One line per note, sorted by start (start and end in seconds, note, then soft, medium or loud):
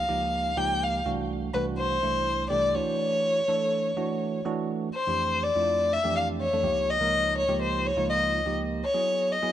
0.00 0.59 F5 medium
0.09 0.52 C#2 medium
0.09 0.52 F3 medium
0.09 0.52 A#3 medium
0.09 0.52 D#4 medium
0.09 0.52 G4 medium
0.57 1.00 C#2 medium
0.57 1.00 F3 medium
0.57 1.00 A#3 medium
0.57 1.00 D#4 medium
0.57 1.00 G4 medium
0.57 0.84 G5 medium
0.83 1.06 F5 medium
1.05 1.48 C2 medium
1.05 1.49 E3 medium
1.05 1.49 A3 medium
1.05 1.49 D4 medium
1.05 1.49 F#4 medium
1.54 1.97 C2 medium
1.54 1.97 E3 medium
1.54 1.97 A3 medium
1.54 1.97 D4 medium
1.54 1.97 F#4 medium
1.54 1.65 B4 medium
1.78 2.47 C5 medium
2.03 2.46 C2 medium
2.03 2.46 E3 medium
2.03 2.46 A3 medium
2.03 2.46 D4 medium
2.03 2.46 E4 medium
2.50 2.75 C2 medium
2.50 2.74 E3 medium
2.50 2.74 A3 medium
2.50 2.74 D4 medium
2.50 2.75 G4 medium
2.50 2.76 D5 medium
2.74 3.40 E3 medium
2.74 3.39 A3 medium
2.74 3.40 D4 medium
2.74 3.40 F#4 medium
2.74 4.45 C#5 medium
3.48 3.91 E3 medium
3.48 3.91 A3 medium
3.48 3.91 D4 medium
3.48 3.91 A4 medium
3.96 4.39 E3 medium
3.96 4.39 A3 medium
3.96 4.40 D4 medium
3.96 4.40 F#4 medium
4.45 4.88 E3 medium
4.45 4.88 A3 medium
4.45 4.88 D4 medium
4.45 4.88 F#4 medium
4.95 5.45 C5 medium
5.07 5.49 F2 medium
5.07 5.49 E3 medium
5.07 5.49 A3 medium
5.07 5.49 D4 medium
5.07 5.49 G4 medium
5.43 5.94 D5 medium
5.56 5.97 F2 medium
5.56 5.97 A3 medium
5.56 5.97 D4 medium
5.56 5.97 E4 medium
5.56 5.97 F4 medium
5.93 6.16 E5 loud
6.04 6.46 F2 medium
6.04 6.46 E3 medium
6.04 6.46 A3 medium
6.04 6.46 D4 medium
6.04 6.46 G4 medium
6.16 6.27 F5 medium
6.41 6.91 C#5 medium
6.53 6.64 F2 medium
6.53 6.64 E3 medium
6.53 6.64 A3 medium
6.53 6.64 D4 medium
6.53 6.64 A4 medium
6.63 6.96 C#2 medium
6.63 6.96 F3 medium
6.63 6.96 A#3 medium
6.63 6.96 D#4 medium
6.63 6.96 G4 medium
6.90 7.37 D#5 medium
7.00 7.43 C#2 medium
7.00 7.43 F3 medium
7.00 7.43 A#3 medium
7.00 7.43 D#4 medium
7.00 7.43 A#4 medium
7.38 7.60 C#5 medium
7.48 7.91 C#2 medium
7.48 7.91 F3 medium
7.48 7.91 A#3 medium
7.48 7.91 D#4 medium
7.48 7.91 G4 medium
7.62 7.88 C5 medium
7.86 8.09 C#5 medium
7.97 8.39 C#2 medium
7.97 8.39 F3 medium
7.97 8.40 A#3 medium
7.97 8.39 D#4 medium
7.97 8.39 F4 medium
8.09 8.54 D#5 medium
8.46 8.82 C#2 medium
8.46 8.82 F3 medium
8.46 8.82 A#3 medium
8.46 8.82 D#4 medium
8.46 8.82 G4 medium
8.85 9.33 C#5 medium
8.94 9.36 F#3 medium
8.94 9.36 B3 medium
8.94 9.37 E4 medium
8.94 9.37 G#4 medium
9.32 9.52 D#5 medium
9.42 9.52 F#3 medium
9.42 9.52 B3 medium
9.42 9.52 E4 medium
9.42 9.52 G#4 medium